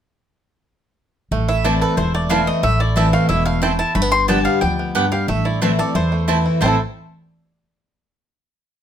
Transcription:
1.31 1.82 A1 medium
1.31 1.94 A2 medium
1.31 2.14 A3 medium
1.49 1.65 E4 medium
1.49 1.64 E5 medium
1.64 1.96 E3 medium
1.64 1.96 A3 medium
1.64 1.74 C4 medium
1.64 1.97 C4 medium
1.64 1.97 E4 medium
1.64 1.74 E4 medium
1.64 1.97 E4 medium
1.64 1.74 C5 medium
1.64 1.81 D5 medium
1.64 1.74 A5 medium
1.81 2.27 A4 medium
1.81 1.97 B4 medium
1.97 2.48 E1 medium
1.97 2.60 E2 medium
1.97 2.30 E4 medium
1.97 2.14 C5 medium
2.14 2.46 A3 medium
2.14 2.30 D5 medium
2.29 2.61 E3 medium
2.29 2.62 A3 medium
2.29 2.40 C4 medium
2.29 2.62 C4 medium
2.29 2.40 E4 medium
2.29 2.62 E4 medium
2.29 2.77 E4 medium
2.29 2.40 C5 medium
2.29 2.47 F5 medium
2.29 2.40 A5 medium
2.47 2.62 A3 medium
2.47 2.63 D#5 medium
2.63 3.14 A1 medium
2.63 3.26 A2 medium
2.63 3.10 A3 medium
2.63 2.80 E5 medium
2.80 2.96 E4 medium
2.80 2.96 D5 medium
2.96 3.28 E3 medium
2.96 3.28 A3 medium
2.96 3.06 C4 medium
2.96 3.28 C4 medium
2.96 3.28 E4 medium
2.96 3.06 E4 medium
2.96 3.28 E4 medium
2.96 3.06 C5 medium
2.96 3.13 E5 medium
2.96 3.06 A5 medium
3.13 3.45 A3 medium
3.13 3.28 F5 medium
3.29 3.80 E1 medium
3.29 3.61 B2 medium
3.29 3.61 E4 medium
3.29 3.45 E5 medium
3.46 3.93 A3 medium
3.46 3.62 F5 medium
3.62 3.94 A2 medium
3.62 3.72 C4 medium
3.62 3.72 E4 medium
3.62 3.78 E4 medium
3.62 3.72 C5 loud
3.62 3.78 G5 medium
3.62 3.72 A5 loud
3.79 3.96 E4 medium
3.79 3.95 A5 loud
3.95 4.46 G1 medium
3.95 4.58 G2 medium
3.95 4.02 A3 medium
3.95 4.11 B5 medium
4.02 4.28 B3 medium
4.12 4.59 G4 medium
4.12 4.28 C6 loud
4.28 4.60 D3 loud
4.28 4.60 G3 loud
4.28 4.38 B3 medium
4.28 4.61 B3 loud
4.28 4.75 D4 medium
4.28 4.38 G4 medium
4.28 4.61 G4 loud
4.28 4.38 D5 medium
4.28 4.38 G5 medium
4.28 4.44 A5 medium
4.45 4.78 B3 medium
4.45 4.61 F5 medium
4.61 5.13 D2 medium
4.61 4.94 F2 medium
4.61 5.09 G4 medium
4.61 5.08 G5 medium
4.79 5.25 B3 medium
4.95 5.27 G2 medium
4.95 5.04 B3 loud
4.95 5.28 D4 medium
4.95 5.04 G4 loud
4.95 5.05 D5 loud
4.95 5.05 G5 loud
5.12 5.29 G4 medium
5.12 5.28 F5 medium
5.28 5.79 A1 medium
5.28 5.92 A2 medium
5.28 5.61 A3 medium
5.28 5.45 E5 medium
5.45 5.92 E4 medium
5.45 5.61 D5 medium
5.62 5.78 E3 medium
5.62 5.78 A3 medium
5.62 6.09 A3 medium
5.62 5.71 C4 medium
5.62 5.78 C4 medium
5.62 5.71 E4 medium
5.62 5.77 E4 medium
5.62 5.79 B4 medium
5.62 5.71 C5 medium
5.62 5.71 A5 medium
5.78 5.95 C4 soft
5.78 5.94 E4 medium
5.78 6.25 A4 medium
5.78 5.95 D5 loud
5.95 6.46 E2 medium
5.95 6.58 E2 medium
5.95 6.27 E4 medium
5.95 6.50 C5 medium
6.12 6.59 A3 medium
6.28 6.60 E3 medium
6.28 6.60 A3 medium
6.28 6.37 C4 medium
6.28 6.60 C4 medium
6.28 6.37 E4 medium
6.28 6.44 E4 medium
6.28 6.60 E4 medium
6.28 6.38 C5 loud
6.28 6.38 A5 loud
6.46 6.62 E4 medium
6.61 6.77 A1 medium
6.61 6.75 A2 medium
6.61 6.75 E3 medium
6.61 6.75 A3 medium
6.61 6.77 A3 medium
6.61 6.75 C4 medium
6.61 6.75 C4 loud
6.61 6.79 C4 medium
6.61 6.75 E4 medium
6.61 6.76 E4 medium
6.61 6.75 C5 medium
6.61 6.78 C5 medium
6.61 6.76 A5 loud
6.66 6.80 E4 medium
6.66 6.81 A4 medium

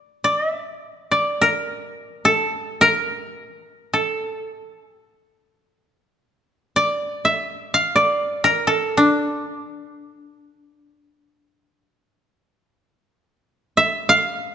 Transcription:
0.00 0.24 D5 medium
0.24 0.49 D5 medium
0.49 1.74 E5 medium
1.11 2.72 D5 medium
1.41 2.31 A#4 medium
2.25 2.87 A4 medium
2.81 3.99 A#4 medium
3.93 4.90 A4 soft
4.90 5.13 G4 soft
5.13 5.84 F4 soft
6.76 7.95 D5 medium
7.25 7.80 E5 medium
7.74 9.18 F5 medium
7.96 9.56 D5 medium
8.44 8.73 A#4 medium
8.67 10.57 A4 medium
8.97 11.86 D4 medium
13.77 14.15 E5 medium
14.09 14.55 F5 medium

